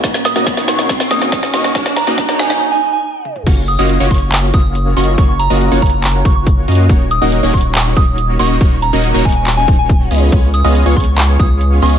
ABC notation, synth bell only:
X:1
M:4/4
L:1/16
Q:1/4=140
K:Ebm
V:1 name="Synth bell"
z2 e' e' z2 d' z3 e' z3 d'2 | z2 b4 a a z a2 a3 z2 | z2 e' e' z2 d' z3 e' z3 d'2 | d' d' b z3 b4 d' d' z4 |
z2 e' e' z2 d' z3 e' z3 d'2 | z2 b4 a a z a2 a3 z2 | z2 e' e' z2 d' z3 e' z3 d'2 |]